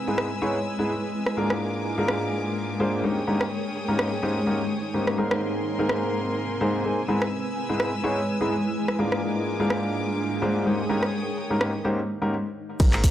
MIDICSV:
0, 0, Header, 1, 6, 480
1, 0, Start_track
1, 0, Tempo, 476190
1, 1381, Time_signature, 4, 2, 24, 8
1, 13211, End_track
2, 0, Start_track
2, 0, Title_t, "String section"
2, 0, Program_c, 0, 48
2, 0, Note_on_c, 0, 56, 72
2, 0, Note_on_c, 0, 71, 64
2, 0, Note_on_c, 0, 80, 67
2, 0, Note_on_c, 0, 88, 81
2, 1361, Note_off_c, 0, 71, 0
2, 1361, Note_off_c, 0, 88, 0
2, 1379, Note_on_c, 0, 70, 69
2, 1380, Note_on_c, 0, 86, 78
2, 3021, Note_off_c, 0, 80, 0
2, 3024, Note_off_c, 0, 56, 0
2, 3043, Note_off_c, 0, 70, 0
2, 3044, Note_off_c, 0, 86, 0
2, 3060, Note_on_c, 0, 68, 74
2, 3060, Note_on_c, 0, 73, 67
2, 3060, Note_on_c, 0, 79, 66
2, 3060, Note_on_c, 0, 87, 80
2, 5199, Note_off_c, 0, 68, 0
2, 5199, Note_off_c, 0, 73, 0
2, 5199, Note_off_c, 0, 79, 0
2, 5199, Note_off_c, 0, 87, 0
2, 5220, Note_on_c, 0, 70, 73
2, 5220, Note_on_c, 0, 80, 67
2, 5220, Note_on_c, 0, 84, 81
2, 7121, Note_off_c, 0, 70, 0
2, 7121, Note_off_c, 0, 84, 0
2, 7140, Note_on_c, 0, 71, 66
2, 7140, Note_on_c, 0, 88, 83
2, 7141, Note_on_c, 0, 56, 72
2, 9041, Note_off_c, 0, 71, 0
2, 9041, Note_off_c, 0, 88, 0
2, 9060, Note_on_c, 0, 86, 81
2, 9061, Note_on_c, 0, 70, 70
2, 10700, Note_off_c, 0, 80, 0
2, 10705, Note_off_c, 0, 56, 0
2, 10724, Note_off_c, 0, 70, 0
2, 10724, Note_off_c, 0, 86, 0
2, 10741, Note_on_c, 0, 73, 68
2, 10741, Note_on_c, 0, 79, 66
2, 10742, Note_on_c, 0, 68, 75
2, 10742, Note_on_c, 0, 87, 83
2, 11929, Note_off_c, 0, 68, 0
2, 11929, Note_off_c, 0, 73, 0
2, 11929, Note_off_c, 0, 79, 0
2, 11929, Note_off_c, 0, 87, 0
2, 13211, End_track
3, 0, Start_track
3, 0, Title_t, "Ambient pad"
3, 0, Program_c, 1, 92
3, 0, Note_on_c, 1, 56, 87
3, 0, Note_on_c, 1, 80, 70
3, 1872, Note_on_c, 1, 70, 85
3, 3062, Note_off_c, 1, 80, 0
3, 3566, Note_on_c, 1, 63, 68
3, 3936, Note_off_c, 1, 70, 0
3, 5221, Note_off_c, 1, 56, 0
3, 5223, Note_on_c, 1, 60, 76
3, 5995, Note_off_c, 1, 63, 0
3, 6096, Note_on_c, 1, 80, 69
3, 7140, Note_on_c, 1, 56, 85
3, 7142, Note_off_c, 1, 60, 0
3, 7298, Note_on_c, 1, 71, 70
3, 9061, Note_off_c, 1, 71, 0
3, 10741, Note_off_c, 1, 80, 0
3, 11940, Note_off_c, 1, 56, 0
3, 13211, End_track
4, 0, Start_track
4, 0, Title_t, "Grand piano"
4, 0, Program_c, 2, 0
4, 75, Note_on_c, 2, 44, 78
4, 75, Note_on_c, 2, 56, 70
4, 75, Note_on_c, 2, 59, 70
4, 75, Note_on_c, 2, 64, 69
4, 75, Note_on_c, 2, 68, 70
4, 75, Note_on_c, 2, 71, 84
4, 279, Note_off_c, 2, 44, 0
4, 279, Note_off_c, 2, 56, 0
4, 279, Note_off_c, 2, 59, 0
4, 279, Note_off_c, 2, 64, 0
4, 279, Note_off_c, 2, 68, 0
4, 279, Note_off_c, 2, 71, 0
4, 420, Note_on_c, 2, 64, 80
4, 421, Note_on_c, 2, 44, 85
4, 421, Note_on_c, 2, 56, 78
4, 421, Note_on_c, 2, 59, 79
4, 421, Note_on_c, 2, 68, 78
4, 421, Note_on_c, 2, 73, 94
4, 563, Note_off_c, 2, 44, 0
4, 563, Note_off_c, 2, 56, 0
4, 563, Note_off_c, 2, 59, 0
4, 563, Note_off_c, 2, 64, 0
4, 563, Note_off_c, 2, 68, 0
4, 563, Note_off_c, 2, 73, 0
4, 795, Note_on_c, 2, 44, 76
4, 795, Note_on_c, 2, 56, 72
4, 795, Note_on_c, 2, 59, 70
4, 795, Note_on_c, 2, 64, 71
4, 795, Note_on_c, 2, 68, 70
4, 795, Note_on_c, 2, 71, 88
4, 912, Note_off_c, 2, 44, 0
4, 912, Note_off_c, 2, 56, 0
4, 912, Note_off_c, 2, 59, 0
4, 912, Note_off_c, 2, 64, 0
4, 912, Note_off_c, 2, 68, 0
4, 912, Note_off_c, 2, 71, 0
4, 1381, Note_on_c, 2, 44, 73
4, 1381, Note_on_c, 2, 58, 69
4, 1381, Note_on_c, 2, 62, 68
4, 1381, Note_on_c, 2, 65, 67
4, 1381, Note_on_c, 2, 68, 69
4, 1381, Note_on_c, 2, 70, 81
4, 1963, Note_off_c, 2, 44, 0
4, 1963, Note_off_c, 2, 58, 0
4, 1963, Note_off_c, 2, 62, 0
4, 1963, Note_off_c, 2, 65, 0
4, 1963, Note_off_c, 2, 68, 0
4, 1963, Note_off_c, 2, 70, 0
4, 1994, Note_on_c, 2, 44, 82
4, 1994, Note_on_c, 2, 58, 76
4, 1994, Note_on_c, 2, 62, 75
4, 1994, Note_on_c, 2, 65, 77
4, 1994, Note_on_c, 2, 68, 78
4, 1994, Note_on_c, 2, 70, 91
4, 2795, Note_off_c, 2, 44, 0
4, 2795, Note_off_c, 2, 58, 0
4, 2795, Note_off_c, 2, 62, 0
4, 2795, Note_off_c, 2, 65, 0
4, 2795, Note_off_c, 2, 68, 0
4, 2795, Note_off_c, 2, 70, 0
4, 2821, Note_on_c, 2, 44, 84
4, 2821, Note_on_c, 2, 58, 80
4, 2821, Note_on_c, 2, 62, 78
4, 2821, Note_on_c, 2, 65, 81
4, 2821, Note_on_c, 2, 68, 79
4, 2821, Note_on_c, 2, 72, 97
4, 3035, Note_off_c, 2, 44, 0
4, 3035, Note_off_c, 2, 58, 0
4, 3035, Note_off_c, 2, 62, 0
4, 3035, Note_off_c, 2, 65, 0
4, 3035, Note_off_c, 2, 68, 0
4, 3035, Note_off_c, 2, 72, 0
4, 3060, Note_on_c, 2, 61, 67
4, 3060, Note_on_c, 2, 67, 66
4, 3061, Note_on_c, 2, 44, 71
4, 3061, Note_on_c, 2, 58, 68
4, 3061, Note_on_c, 2, 63, 68
4, 3061, Note_on_c, 2, 72, 77
4, 3203, Note_off_c, 2, 44, 0
4, 3203, Note_off_c, 2, 58, 0
4, 3203, Note_off_c, 2, 61, 0
4, 3203, Note_off_c, 2, 63, 0
4, 3203, Note_off_c, 2, 67, 0
4, 3203, Note_off_c, 2, 72, 0
4, 3300, Note_on_c, 2, 44, 82
4, 3300, Note_on_c, 2, 61, 73
4, 3300, Note_on_c, 2, 63, 73
4, 3300, Note_on_c, 2, 67, 73
4, 3300, Note_on_c, 2, 70, 87
4, 3301, Note_on_c, 2, 58, 74
4, 3443, Note_off_c, 2, 44, 0
4, 3443, Note_off_c, 2, 58, 0
4, 3443, Note_off_c, 2, 61, 0
4, 3443, Note_off_c, 2, 63, 0
4, 3443, Note_off_c, 2, 67, 0
4, 3443, Note_off_c, 2, 70, 0
4, 3914, Note_on_c, 2, 44, 77
4, 3914, Note_on_c, 2, 58, 70
4, 3914, Note_on_c, 2, 61, 69
4, 3914, Note_on_c, 2, 63, 71
4, 3914, Note_on_c, 2, 67, 69
4, 3915, Note_on_c, 2, 70, 83
4, 4119, Note_off_c, 2, 44, 0
4, 4119, Note_off_c, 2, 58, 0
4, 4119, Note_off_c, 2, 61, 0
4, 4119, Note_off_c, 2, 63, 0
4, 4119, Note_off_c, 2, 67, 0
4, 4119, Note_off_c, 2, 70, 0
4, 4261, Note_on_c, 2, 44, 86
4, 4261, Note_on_c, 2, 58, 79
4, 4261, Note_on_c, 2, 61, 80
4, 4261, Note_on_c, 2, 63, 79
4, 4261, Note_on_c, 2, 67, 77
4, 4261, Note_on_c, 2, 72, 91
4, 4403, Note_off_c, 2, 44, 0
4, 4403, Note_off_c, 2, 58, 0
4, 4403, Note_off_c, 2, 61, 0
4, 4403, Note_off_c, 2, 67, 0
4, 4404, Note_off_c, 2, 63, 0
4, 4404, Note_off_c, 2, 72, 0
4, 4501, Note_on_c, 2, 44, 73
4, 4501, Note_on_c, 2, 58, 67
4, 4501, Note_on_c, 2, 61, 67
4, 4501, Note_on_c, 2, 63, 68
4, 4501, Note_on_c, 2, 67, 69
4, 4501, Note_on_c, 2, 70, 80
4, 4643, Note_off_c, 2, 44, 0
4, 4643, Note_off_c, 2, 58, 0
4, 4643, Note_off_c, 2, 61, 0
4, 4643, Note_off_c, 2, 67, 0
4, 4644, Note_off_c, 2, 63, 0
4, 4644, Note_off_c, 2, 70, 0
4, 4981, Note_on_c, 2, 44, 70
4, 4981, Note_on_c, 2, 58, 63
4, 4981, Note_on_c, 2, 61, 61
4, 4981, Note_on_c, 2, 63, 61
4, 4981, Note_on_c, 2, 67, 64
4, 4981, Note_on_c, 2, 72, 74
4, 5196, Note_off_c, 2, 44, 0
4, 5196, Note_off_c, 2, 58, 0
4, 5196, Note_off_c, 2, 61, 0
4, 5196, Note_off_c, 2, 63, 0
4, 5196, Note_off_c, 2, 67, 0
4, 5196, Note_off_c, 2, 72, 0
4, 5221, Note_on_c, 2, 44, 72
4, 5221, Note_on_c, 2, 58, 67
4, 5221, Note_on_c, 2, 60, 68
4, 5221, Note_on_c, 2, 63, 67
4, 5221, Note_on_c, 2, 68, 67
4, 5221, Note_on_c, 2, 70, 80
4, 5802, Note_off_c, 2, 44, 0
4, 5802, Note_off_c, 2, 58, 0
4, 5802, Note_off_c, 2, 60, 0
4, 5802, Note_off_c, 2, 63, 0
4, 5803, Note_off_c, 2, 68, 0
4, 5803, Note_off_c, 2, 70, 0
4, 5835, Note_on_c, 2, 44, 81
4, 5835, Note_on_c, 2, 58, 75
4, 5835, Note_on_c, 2, 60, 76
4, 5835, Note_on_c, 2, 63, 76
4, 5835, Note_on_c, 2, 68, 74
4, 5835, Note_on_c, 2, 70, 90
4, 6635, Note_off_c, 2, 70, 0
4, 6636, Note_off_c, 2, 44, 0
4, 6636, Note_off_c, 2, 58, 0
4, 6636, Note_off_c, 2, 60, 0
4, 6636, Note_off_c, 2, 63, 0
4, 6636, Note_off_c, 2, 68, 0
4, 6661, Note_on_c, 2, 44, 87
4, 6661, Note_on_c, 2, 58, 80
4, 6661, Note_on_c, 2, 60, 77
4, 6661, Note_on_c, 2, 63, 78
4, 6661, Note_on_c, 2, 68, 80
4, 6661, Note_on_c, 2, 72, 96
4, 6875, Note_off_c, 2, 44, 0
4, 6876, Note_off_c, 2, 58, 0
4, 6876, Note_off_c, 2, 60, 0
4, 6876, Note_off_c, 2, 63, 0
4, 6876, Note_off_c, 2, 68, 0
4, 6876, Note_off_c, 2, 72, 0
4, 6901, Note_on_c, 2, 58, 71
4, 6901, Note_on_c, 2, 60, 68
4, 6901, Note_on_c, 2, 63, 66
4, 6901, Note_on_c, 2, 68, 69
4, 6901, Note_on_c, 2, 72, 83
4, 7044, Note_off_c, 2, 58, 0
4, 7044, Note_off_c, 2, 60, 0
4, 7044, Note_off_c, 2, 63, 0
4, 7044, Note_off_c, 2, 68, 0
4, 7044, Note_off_c, 2, 72, 0
4, 7141, Note_on_c, 2, 44, 85
4, 7141, Note_on_c, 2, 56, 73
4, 7141, Note_on_c, 2, 59, 76
4, 7141, Note_on_c, 2, 64, 75
4, 7141, Note_on_c, 2, 68, 73
4, 7141, Note_on_c, 2, 71, 90
4, 7283, Note_off_c, 2, 56, 0
4, 7283, Note_off_c, 2, 71, 0
4, 7284, Note_off_c, 2, 44, 0
4, 7284, Note_off_c, 2, 59, 0
4, 7284, Note_off_c, 2, 64, 0
4, 7284, Note_off_c, 2, 68, 0
4, 7755, Note_on_c, 2, 44, 76
4, 7755, Note_on_c, 2, 56, 71
4, 7755, Note_on_c, 2, 59, 68
4, 7755, Note_on_c, 2, 64, 72
4, 7755, Note_on_c, 2, 68, 70
4, 7755, Note_on_c, 2, 71, 86
4, 7959, Note_off_c, 2, 44, 0
4, 7959, Note_off_c, 2, 56, 0
4, 7959, Note_off_c, 2, 59, 0
4, 7959, Note_off_c, 2, 64, 0
4, 7959, Note_off_c, 2, 68, 0
4, 7959, Note_off_c, 2, 71, 0
4, 8101, Note_on_c, 2, 44, 90
4, 8101, Note_on_c, 2, 56, 79
4, 8101, Note_on_c, 2, 59, 78
4, 8101, Note_on_c, 2, 64, 81
4, 8101, Note_on_c, 2, 68, 82
4, 8101, Note_on_c, 2, 73, 94
4, 8243, Note_off_c, 2, 59, 0
4, 8243, Note_off_c, 2, 64, 0
4, 8244, Note_off_c, 2, 44, 0
4, 8244, Note_off_c, 2, 56, 0
4, 8244, Note_off_c, 2, 68, 0
4, 8244, Note_off_c, 2, 73, 0
4, 8475, Note_on_c, 2, 44, 80
4, 8475, Note_on_c, 2, 56, 74
4, 8475, Note_on_c, 2, 59, 75
4, 8475, Note_on_c, 2, 64, 73
4, 8475, Note_on_c, 2, 68, 73
4, 8475, Note_on_c, 2, 71, 87
4, 8592, Note_off_c, 2, 44, 0
4, 8592, Note_off_c, 2, 56, 0
4, 8592, Note_off_c, 2, 59, 0
4, 8592, Note_off_c, 2, 64, 0
4, 8592, Note_off_c, 2, 68, 0
4, 8592, Note_off_c, 2, 71, 0
4, 9061, Note_on_c, 2, 44, 74
4, 9061, Note_on_c, 2, 58, 68
4, 9061, Note_on_c, 2, 62, 69
4, 9061, Note_on_c, 2, 65, 68
4, 9061, Note_on_c, 2, 68, 70
4, 9061, Note_on_c, 2, 70, 83
4, 9642, Note_off_c, 2, 58, 0
4, 9643, Note_off_c, 2, 44, 0
4, 9643, Note_off_c, 2, 62, 0
4, 9643, Note_off_c, 2, 65, 0
4, 9643, Note_off_c, 2, 68, 0
4, 9643, Note_off_c, 2, 70, 0
4, 9675, Note_on_c, 2, 44, 84
4, 9675, Note_on_c, 2, 58, 78
4, 9675, Note_on_c, 2, 62, 78
4, 9675, Note_on_c, 2, 65, 77
4, 9675, Note_on_c, 2, 68, 78
4, 9675, Note_on_c, 2, 70, 93
4, 10476, Note_off_c, 2, 44, 0
4, 10476, Note_off_c, 2, 58, 0
4, 10476, Note_off_c, 2, 62, 0
4, 10476, Note_off_c, 2, 65, 0
4, 10476, Note_off_c, 2, 68, 0
4, 10476, Note_off_c, 2, 70, 0
4, 10501, Note_on_c, 2, 44, 90
4, 10501, Note_on_c, 2, 58, 80
4, 10501, Note_on_c, 2, 62, 82
4, 10501, Note_on_c, 2, 65, 83
4, 10501, Note_on_c, 2, 68, 85
4, 10501, Note_on_c, 2, 72, 102
4, 10715, Note_off_c, 2, 44, 0
4, 10716, Note_off_c, 2, 58, 0
4, 10716, Note_off_c, 2, 62, 0
4, 10716, Note_off_c, 2, 65, 0
4, 10716, Note_off_c, 2, 68, 0
4, 10716, Note_off_c, 2, 72, 0
4, 10741, Note_on_c, 2, 44, 77
4, 10741, Note_on_c, 2, 58, 67
4, 10741, Note_on_c, 2, 61, 68
4, 10741, Note_on_c, 2, 63, 67
4, 10741, Note_on_c, 2, 67, 69
4, 10741, Note_on_c, 2, 72, 83
4, 10884, Note_off_c, 2, 44, 0
4, 10884, Note_off_c, 2, 58, 0
4, 10884, Note_off_c, 2, 61, 0
4, 10884, Note_off_c, 2, 63, 0
4, 10884, Note_off_c, 2, 67, 0
4, 10884, Note_off_c, 2, 72, 0
4, 10981, Note_on_c, 2, 61, 78
4, 10981, Note_on_c, 2, 67, 76
4, 10982, Note_on_c, 2, 44, 86
4, 10982, Note_on_c, 2, 58, 75
4, 10982, Note_on_c, 2, 63, 75
4, 10982, Note_on_c, 2, 70, 95
4, 11124, Note_off_c, 2, 44, 0
4, 11124, Note_off_c, 2, 58, 0
4, 11124, Note_off_c, 2, 61, 0
4, 11124, Note_off_c, 2, 63, 0
4, 11124, Note_off_c, 2, 67, 0
4, 11124, Note_off_c, 2, 70, 0
4, 11594, Note_on_c, 2, 63, 73
4, 11595, Note_on_c, 2, 44, 78
4, 11595, Note_on_c, 2, 58, 73
4, 11595, Note_on_c, 2, 61, 72
4, 11595, Note_on_c, 2, 67, 70
4, 11595, Note_on_c, 2, 70, 88
4, 11799, Note_off_c, 2, 44, 0
4, 11799, Note_off_c, 2, 58, 0
4, 11799, Note_off_c, 2, 61, 0
4, 11799, Note_off_c, 2, 63, 0
4, 11799, Note_off_c, 2, 67, 0
4, 11799, Note_off_c, 2, 70, 0
4, 11941, Note_on_c, 2, 44, 90
4, 11941, Note_on_c, 2, 58, 84
4, 11941, Note_on_c, 2, 61, 81
4, 11941, Note_on_c, 2, 63, 81
4, 11941, Note_on_c, 2, 67, 84
4, 11941, Note_on_c, 2, 72, 97
4, 12084, Note_off_c, 2, 44, 0
4, 12084, Note_off_c, 2, 58, 0
4, 12084, Note_off_c, 2, 61, 0
4, 12084, Note_off_c, 2, 63, 0
4, 12084, Note_off_c, 2, 67, 0
4, 12084, Note_off_c, 2, 72, 0
4, 12315, Note_on_c, 2, 44, 83
4, 12315, Note_on_c, 2, 58, 73
4, 12315, Note_on_c, 2, 61, 72
4, 12315, Note_on_c, 2, 63, 73
4, 12315, Note_on_c, 2, 67, 73
4, 12315, Note_on_c, 2, 70, 90
4, 12432, Note_off_c, 2, 44, 0
4, 12432, Note_off_c, 2, 58, 0
4, 12432, Note_off_c, 2, 61, 0
4, 12432, Note_off_c, 2, 63, 0
4, 12432, Note_off_c, 2, 67, 0
4, 12432, Note_off_c, 2, 70, 0
4, 12901, Note_on_c, 2, 44, 80
4, 12902, Note_on_c, 2, 58, 73
4, 12902, Note_on_c, 2, 60, 73
4, 12902, Note_on_c, 2, 63, 75
4, 12902, Note_on_c, 2, 68, 74
4, 12902, Note_on_c, 2, 70, 88
4, 13211, Note_off_c, 2, 44, 0
4, 13211, Note_off_c, 2, 58, 0
4, 13211, Note_off_c, 2, 60, 0
4, 13211, Note_off_c, 2, 63, 0
4, 13211, Note_off_c, 2, 68, 0
4, 13211, Note_off_c, 2, 70, 0
4, 13211, End_track
5, 0, Start_track
5, 0, Title_t, "FM bass"
5, 0, Program_c, 3, 39
5, 12902, Note_on_c, 3, 32, 102
5, 13211, Note_off_c, 3, 32, 0
5, 13211, End_track
6, 0, Start_track
6, 0, Title_t, "Drums"
6, 181, Note_on_c, 9, 37, 73
6, 282, Note_off_c, 9, 37, 0
6, 1274, Note_on_c, 9, 37, 57
6, 1375, Note_off_c, 9, 37, 0
6, 1514, Note_on_c, 9, 37, 65
6, 1615, Note_off_c, 9, 37, 0
6, 2101, Note_on_c, 9, 37, 72
6, 2201, Note_off_c, 9, 37, 0
6, 3434, Note_on_c, 9, 37, 66
6, 3535, Note_off_c, 9, 37, 0
6, 4021, Note_on_c, 9, 37, 78
6, 4122, Note_off_c, 9, 37, 0
6, 5115, Note_on_c, 9, 37, 61
6, 5215, Note_off_c, 9, 37, 0
6, 5354, Note_on_c, 9, 37, 65
6, 5455, Note_off_c, 9, 37, 0
6, 5941, Note_on_c, 9, 37, 77
6, 6042, Note_off_c, 9, 37, 0
6, 7274, Note_on_c, 9, 37, 64
6, 7375, Note_off_c, 9, 37, 0
6, 7860, Note_on_c, 9, 37, 76
6, 7961, Note_off_c, 9, 37, 0
6, 8954, Note_on_c, 9, 37, 57
6, 9055, Note_off_c, 9, 37, 0
6, 9194, Note_on_c, 9, 37, 62
6, 9295, Note_off_c, 9, 37, 0
6, 9781, Note_on_c, 9, 37, 72
6, 9882, Note_off_c, 9, 37, 0
6, 11115, Note_on_c, 9, 37, 59
6, 11215, Note_off_c, 9, 37, 0
6, 11701, Note_on_c, 9, 37, 69
6, 11802, Note_off_c, 9, 37, 0
6, 12901, Note_on_c, 9, 42, 86
6, 12901, Note_on_c, 9, 49, 106
6, 12901, Note_on_c, 9, 82, 83
6, 12902, Note_on_c, 9, 36, 118
6, 12903, Note_on_c, 9, 54, 42
6, 12904, Note_off_c, 9, 82, 0
6, 12904, Note_on_c, 9, 82, 46
6, 13002, Note_off_c, 9, 42, 0
6, 13002, Note_off_c, 9, 49, 0
6, 13003, Note_off_c, 9, 36, 0
6, 13004, Note_off_c, 9, 54, 0
6, 13004, Note_off_c, 9, 82, 0
6, 13035, Note_on_c, 9, 39, 40
6, 13035, Note_on_c, 9, 42, 39
6, 13037, Note_on_c, 9, 82, 23
6, 13135, Note_off_c, 9, 39, 0
6, 13135, Note_off_c, 9, 42, 0
6, 13138, Note_off_c, 9, 82, 0
6, 13139, Note_on_c, 9, 54, 94
6, 13141, Note_on_c, 9, 46, 109
6, 13142, Note_on_c, 9, 36, 60
6, 13143, Note_on_c, 9, 82, 72
6, 13144, Note_off_c, 9, 82, 0
6, 13144, Note_on_c, 9, 82, 80
6, 13211, Note_off_c, 9, 36, 0
6, 13211, Note_off_c, 9, 46, 0
6, 13211, Note_off_c, 9, 54, 0
6, 13211, Note_off_c, 9, 82, 0
6, 13211, End_track
0, 0, End_of_file